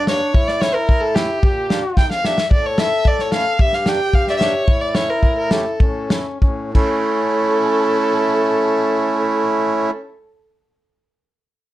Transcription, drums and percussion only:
0.07 snare
0.34 kick
0.48 snare
0.62 snare
0.89 kick
1.16 snare
1.43 kick
1.70 snare
1.97 kick, snare
2.11 snare
2.25 snare
2.38 snare
2.51 kick
2.78 snare
3.05 kick
3.19 snare
3.32 snare
3.59 kick
3.73 snare
3.86 snare
4.13 kick
4.27 snare
4.41 snare
4.68 kick
4.95 snare
5.23 kick
5.51 snare
5.80 kick
6.10 snare
6.42 kick
6.75 kick, crash

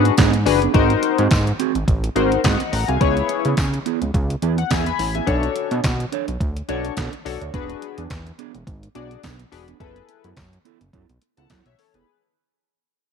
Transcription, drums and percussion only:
0.05 closed hi-hat
0.17 kick, snare, clap, closed hi-hat, tambourine
0.33 closed hi-hat
0.46 open hi-hat
0.62 closed hi-hat
0.74 kick, closed hi-hat
0.90 closed hi-hat
1.03 closed hi-hat
1.18 closed hi-hat
1.31 kick, snare, clap, closed hi-hat, tambourine
1.47 closed hi-hat
1.60 closed hi-hat
1.75 closed hi-hat
1.88 kick, closed hi-hat
2.04 closed hi-hat
2.16 closed hi-hat
2.32 closed hi-hat
2.44 kick, snare, clap, closed hi-hat, tambourine
2.60 closed hi-hat
2.73 open hi-hat
2.89 closed hi-hat
3.01 kick, closed hi-hat
3.17 closed hi-hat
3.29 closed hi-hat
3.45 closed hi-hat
3.57 kick, snare, clap, closed hi-hat, tambourine
3.74 closed hi-hat
3.86 closed hi-hat
4.02 closed hi-hat
4.14 kick, closed hi-hat
4.30 closed hi-hat
4.42 closed hi-hat
4.58 closed hi-hat
4.71 kick, snare, clap, closed hi-hat, tambourine
4.86 closed hi-hat
4.99 open hi-hat
5.15 closed hi-hat
5.27 kick, closed hi-hat
5.43 closed hi-hat
5.56 closed hi-hat
5.71 closed hi-hat
5.84 kick, snare, clap, closed hi-hat, tambourine
6.00 closed hi-hat
6.13 closed hi-hat
6.28 closed hi-hat
6.41 kick, closed hi-hat
6.57 closed hi-hat
6.69 closed hi-hat
6.85 closed hi-hat
6.97 kick, snare, clap, closed hi-hat, tambourine
7.13 closed hi-hat
7.26 open hi-hat
7.42 closed hi-hat
7.54 kick, closed hi-hat
7.70 closed hi-hat
7.82 closed hi-hat
7.98 closed hi-hat
8.10 kick, snare, clap, closed hi-hat, tambourine
8.27 closed hi-hat
8.39 closed hi-hat
8.55 closed hi-hat
8.67 kick, closed hi-hat
8.83 closed hi-hat
8.95 closed hi-hat
9.11 closed hi-hat
9.23 kick, snare, clap, closed hi-hat, tambourine
9.39 closed hi-hat
9.52 open hi-hat
9.68 closed hi-hat
9.80 kick, closed hi-hat
9.96 closed hi-hat
10.09 closed hi-hat
10.24 closed hi-hat
10.37 kick, snare, clap, closed hi-hat, tambourine
10.53 closed hi-hat
10.65 closed hi-hat
10.81 closed hi-hat
10.93 kick, closed hi-hat
11.09 closed hi-hat
11.22 closed hi-hat
11.37 closed hi-hat
11.50 kick, snare, clap, closed hi-hat, tambourine
11.66 closed hi-hat
11.79 open hi-hat
11.94 closed hi-hat

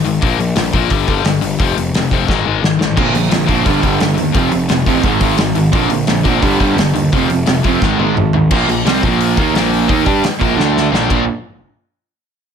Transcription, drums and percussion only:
0.05 open hi-hat
0.22 kick, open hi-hat
0.40 open hi-hat
0.56 snare, open hi-hat
0.73 kick, open hi-hat
0.90 kick, open hi-hat
1.08 kick, open hi-hat
1.25 snare, open hi-hat
1.42 open hi-hat
1.60 kick, open hi-hat
1.78 open hi-hat
1.94 snare, open hi-hat
2.11 kick, open hi-hat
2.28 kick, snare
2.64 snare
2.81 snare
2.97 kick, crash
3.15 open hi-hat
3.31 snare, open hi-hat
3.49 kick, open hi-hat
3.66 kick, open hi-hat
3.83 kick, open hi-hat
4.00 snare, open hi-hat
4.18 open hi-hat
4.35 kick, open hi-hat
4.52 open hi-hat
4.69 snare, open hi-hat
4.86 kick, open hi-hat
5.03 kick, open hi-hat
5.21 kick, open hi-hat
5.38 snare, open hi-hat
5.55 open hi-hat
5.73 kick, open hi-hat
5.90 open hi-hat
6.07 snare, open hi-hat
6.25 kick, open hi-hat
6.42 kick, open hi-hat
6.60 kick, open hi-hat
6.78 snare, open hi-hat
6.95 open hi-hat
7.13 kick, open hi-hat
7.30 open hi-hat
7.46 snare, open hi-hat
7.64 kick, open hi-hat
7.82 kick, snare
8.00 high tom
8.17 mid tom
8.33 floor tom
8.51 kick, crash
8.69 open hi-hat
8.87 snare, open hi-hat
9.03 kick, open hi-hat
9.21 open hi-hat
9.37 kick, open hi-hat
9.55 snare, open hi-hat
9.73 open hi-hat
9.89 kick, open hi-hat
10.06 kick, open hi-hat
10.24 snare, open hi-hat
10.41 kick, open hi-hat
10.60 snare
10.77 snare
10.94 snare
11.10 kick, crash

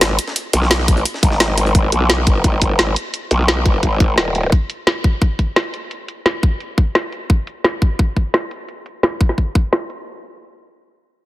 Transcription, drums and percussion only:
0.01 snare, closed hi-hat
0.19 closed hi-hat
0.28 snare
0.36 closed hi-hat
0.53 closed hi-hat
0.62 snare
0.71 snare, closed hi-hat
0.80 snare
0.88 kick, closed hi-hat
0.97 closed hi-hat
1.05 closed hi-hat
1.14 snare
1.23 kick, closed hi-hat
1.32 snare
1.40 snare, closed hi-hat
1.58 closed hi-hat
1.66 closed hi-hat
1.75 kick, closed hi-hat
1.92 closed hi-hat
2.10 snare, closed hi-hat
2.27 kick, closed hi-hat
2.44 kick, closed hi-hat
2.62 kick, closed hi-hat
2.79 snare, closed hi-hat
2.96 closed hi-hat
3.14 closed hi-hat
3.31 closed hi-hat
3.48 snare, closed hi-hat
3.66 kick, closed hi-hat
3.83 kick, closed hi-hat
4.00 kick, closed hi-hat
4.18 snare, closed hi-hat
4.35 closed hi-hat
4.52 kick, closed hi-hat
4.70 closed hi-hat
4.87 snare, closed hi-hat
5.04 kick, closed hi-hat
5.22 kick, closed hi-hat
5.39 kick, closed hi-hat
5.56 snare, closed hi-hat
5.74 closed hi-hat
5.91 closed hi-hat
6.08 closed hi-hat
6.26 snare, closed hi-hat
6.43 kick, closed hi-hat
6.60 closed hi-hat
6.78 kick, closed hi-hat
6.95 snare, closed hi-hat
7.12 closed hi-hat
7.30 kick, closed hi-hat
7.47 closed hi-hat
7.64 snare, closed hi-hat
7.82 kick, closed hi-hat
7.99 kick, closed hi-hat
8.16 kick, closed hi-hat
8.34 snare, closed hi-hat
8.51 closed hi-hat
8.69 closed hi-hat
8.86 closed hi-hat
9.03 snare, closed hi-hat
9.21 kick
9.29 snare
9.38 kick, closed hi-hat
9.55 kick
9.73 snare, closed hi-hat
9.90 closed hi-hat

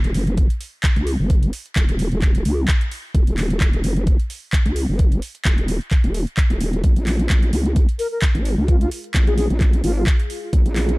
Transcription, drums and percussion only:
0.04 closed hi-hat
0.14 open hi-hat
0.27 closed hi-hat
0.37 kick, closed hi-hat
0.50 closed hi-hat
0.61 open hi-hat
0.83 kick, clap, closed hi-hat
0.96 closed hi-hat
1.07 open hi-hat
1.30 kick, closed hi-hat
1.43 closed hi-hat
1.53 open hi-hat
1.66 closed hi-hat
1.76 kick, clap, closed hi-hat
1.89 closed hi-hat
1.99 open hi-hat
2.12 closed hi-hat
2.22 kick, clap, closed hi-hat
2.35 closed hi-hat
2.45 open hi-hat
2.68 kick, clap, closed hi-hat
2.81 closed hi-hat
2.91 open hi-hat
3.15 kick, closed hi-hat
3.27 closed hi-hat
3.37 clap, open hi-hat
3.50 closed hi-hat
3.60 kick, clap, closed hi-hat
3.73 closed hi-hat
3.84 open hi-hat
3.96 closed hi-hat
4.07 kick, closed hi-hat
4.20 closed hi-hat
4.30 open hi-hat
4.53 kick, clap, closed hi-hat
4.66 closed hi-hat
4.76 open hi-hat
4.99 kick, closed hi-hat
5.12 closed hi-hat
5.22 open hi-hat
5.35 closed hi-hat
5.45 kick, clap, closed hi-hat
5.58 closed hi-hat
5.68 open hi-hat
5.81 closed hi-hat
5.91 kick, clap, closed hi-hat
6.04 closed hi-hat
6.14 open hi-hat
6.27 closed hi-hat
6.37 kick, clap, closed hi-hat
6.50 closed hi-hat
6.61 open hi-hat
6.73 closed hi-hat
6.84 kick, closed hi-hat
6.96 closed hi-hat
7.07 clap, open hi-hat
7.19 closed hi-hat
7.30 kick, clap, closed hi-hat
7.42 closed hi-hat
7.53 open hi-hat
7.66 closed hi-hat
7.76 kick, closed hi-hat
7.89 closed hi-hat
7.99 open hi-hat
8.22 kick, clap, closed hi-hat
8.35 closed hi-hat
8.45 open hi-hat
8.68 kick, closed hi-hat
8.81 closed hi-hat
8.91 open hi-hat
9.04 closed hi-hat
9.14 kick, clap, closed hi-hat
9.27 closed hi-hat
9.38 open hi-hat
9.50 closed hi-hat
9.60 kick, clap, closed hi-hat
9.73 closed hi-hat
9.84 open hi-hat
10.07 kick, clap, closed hi-hat
10.19 closed hi-hat
10.30 open hi-hat
10.53 kick, closed hi-hat
10.66 closed hi-hat
10.76 clap, open hi-hat
10.89 closed hi-hat

